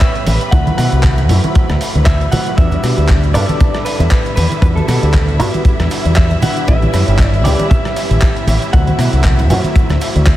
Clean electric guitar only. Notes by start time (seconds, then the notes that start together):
0.00 E5
0.51 F#5
0.78 F#5
2.06 E5
2.32 F#5
2.57 E5
3.34 D5
3.85 B4
4.36 B4
4.62 B4
4.76 A4
4.88 A4
6.17 E5
6.43 F#5
6.68 E5
7.26 D5
7.44 D5
7.70 E5
8.73 F#5